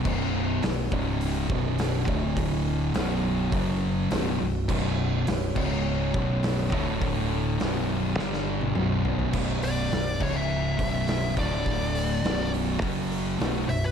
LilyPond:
<<
  \new Staff \with { instrumentName = "Lead electric guitar" } { \time 4/4 \key b \minor \tempo 4 = 103 r1 | r1 | r1 | r1 |
r8 d''4 cis''16 e''4.~ e''16 d''8~ | d''4. r2 e''16 b'16 | }
  \new Staff \with { instrumentName = "Synth drone" } { \time 4/4 \key b \minor << { cis''2.~ cis''8 r8 | r2 fis'4 cis''4~ | cis''2.~ cis''8 r8 | r1 |
r1 | r4 fis'2. | } \\ { r1 | r2. b4~ | b4. r2 r8 | r1 |
r1 | r1 | } >> }
  \new Staff \with { instrumentName = "Distorted electric guitar" } { \clef bass \time 4/4 \key b \minor <b,, fis, b,>4 <b,, fis,>8 <cis, gis, cis>4 <b,, fis, b,>4 <d, a, d>8~ | <d, a, d>4 <b,, fis, b,>4 <fis, cis fis>4 <b,, fis, b,>8 <b,, fis,>8 | <b,, fis, b,>4 <b,, fis,>8 <cis, gis, cis>4 <b,, fis, b,>4 <d, a, d>8~ | <d, a, d>4 <b,, fis, b,>4 <g, d g>4 <b,, fis, b,>4 |
<b,, fis, b,>4 <b,, fis,>8 <cis, gis, cis>4 <b,, fis, b,>4 <d, a, d>8~ | <d, a, d>4 <b,, fis, b,>4 <fis, cis fis>4 <b,, fis, b,>8 <b,, fis,>8 | }
  \new Staff \with { instrumentName = "Distorted electric guitar" } { \clef bass \time 4/4 \key b \minor <b,, fis, b,>4 <b,, fis,>8 <cis, gis, cis>4 <b,, fis, b,>4 <d, a, d>8~ | <d, a, d>4 <b,, fis, b,>4 <fis, cis fis>4 <b,, fis, b,>8 <b,, fis,>8 | <b,, fis, b,>4 <b,, fis,>8 <cis, gis, cis>4 <b,, fis, b,>4 <d, a, d>8~ | <d, a, d>4 <b,, fis, b,>4 <g, d g>4 <b,, fis, b,>4 |
<b,, fis, b,>4 <b,, fis,>8 <cis, gis, cis>4 <b,, fis, b,>4 <d, a, d>8~ | <d, a, d>4 <b,, fis, b,>4 <fis, cis fis>4 <b,, fis, b,>8 <b,, fis,>8 | }
  \new Staff \with { instrumentName = "Fingered electric bass" } { \clef bass \time 4/4 \key b \minor b,,,4 b,,,8 cis,,4 b,,,4 d,,8~ | d,,4 b,,,4 fis,,4 b,,,8 b,,,8 | b,,,4 b,,,8 cis,,4 b,,,4 d,,8~ | d,,4 b,,,4 g,,4 b,,,4 |
b,,,4 b,,,8 cis,,4 b,,,4 d,,8~ | d,,4 b,,,4 fis,,4 b,,,8 b,,,8 | }
  \new DrumStaff \with { instrumentName = "Drums" } \drummode { \time 4/4 <cymc bd>4 <hho sn>8 bd8 hho8 bd8 <hho sn>8 bd8 | <hho bd>4 <hho sn>4 <hho bd>4 <hho sn>4 | <cymc bd>4 <hho sn>8 <cymc bd>8 r8 bd8 <hho sn>8 bd8 | <hho bd>4 <hho sn>4 sn16 sn8 tommh16 toml8 tomfh16 tomfh16 |
<cymc bd>8 hho8 <hho sn>8 <cymc bd>8 r8 <hho bd>8 <hho sn>8 <hho bd>8 | <hho bd>8 hho8 <hho sn>8 hho8 <hho bd>8 hho8 <hho sn>8 hho8 | }
>>